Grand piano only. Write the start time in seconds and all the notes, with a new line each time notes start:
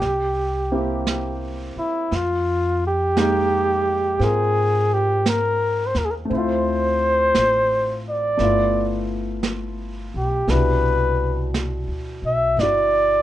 0.72 A#3 C4 E4 G4
3.17 G#3 A#3 D#4 G5
4.20 C4 F4 A#4
6.25 A3
6.30 C4 E4
6.37 F4
8.37 A3 B3 E4
8.43 F4
10.49 B2 D4 E4
10.53 G4
12.60 E4 F#4